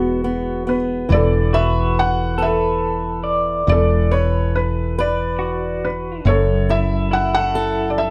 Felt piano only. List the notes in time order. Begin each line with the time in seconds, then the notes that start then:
Already playing: B3 F#4
0.69 B4
1.12 A4 D5
1.54 E5
1.99 F#5
2.42 A4 E5
3.69 A4 D5
4.11 C#5
4.55 B4
5.00 D5
5.85 B4
6.27 A4 C#5
6.70 E5
7.13 F#5
7.34 F#5
7.90 D5
7.98 E5